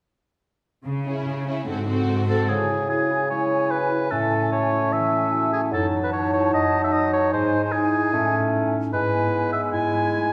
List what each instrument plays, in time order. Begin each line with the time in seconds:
0.85 cello section C#3, harp C#3
1.05 harp C#4, viola section C#4, violin section E4 G#4
1.25 cello section C#3, harp G#4
1.46 harp C#4, viola section C#4, violin section E4 G#4
1.66 cello section G#2, harp G#2, viola section C4, violin section F#4 A4
1.87 harp C4, viola section C4, violin section F#4 A4
2.07 cello section G#2, harp A4
2.28 harp C4, viola section C4, violin section F#4 A4, oboe A4
2.49 bassoon C#3, harp C#3, clarinet E4, oboe G#4, flute section G#5
2.70 harp E4
2.90 harp F#4, oboe G#4
3.11 harp E4
3.30 harp G#3, oboe C#5
3.51 harp E4
3.71 harp F#4, oboe B4
3.91 harp E4
4.11 harp A2, bassoon A3, clarinet C#4, oboe A4
4.32 harp E4
4.52 harp F#4, oboe C#5
4.72 harp E4
4.92 harp E3, oboe E5
5.12 harp E4
5.32 harp F#4
5.52 harp E4, oboe G#4
5.72 harp F#2, bassoon F#3, clarinet D#4, oboe A4, flute section A5
5.93 harp D#4
6.03 oboe B4
6.12 harp E4, oboe C#5
6.33 harp D#4, oboe C#5
6.53 harp F#2, oboe D#5
6.73 harp C#4
6.84 oboe E5
6.93 harp D#4, oboe D#5
7.13 harp D#4, oboe C#5
7.33 harp G#2, bassoon G#3, oboe C5, flute section G#5
7.53 harp D#4
7.64 oboe C5
7.72 harp E4, oboe G#4
7.93 harp D#4
8.13 harp A2, bassoon A3, clarinet C#4
8.32 harp C#4
8.53 harp D#4
8.73 harp C#4
8.93 harp G#2, bassoon G#3, clarinet E4, oboe B4, flute section G#5
9.13 harp B3
9.33 harp C#4
9.53 harp B3, oboe E5
9.73 harp G#2, clarinet E4, oboe G#5, flute section G#5
9.94 harp G#3
10.14 harp A3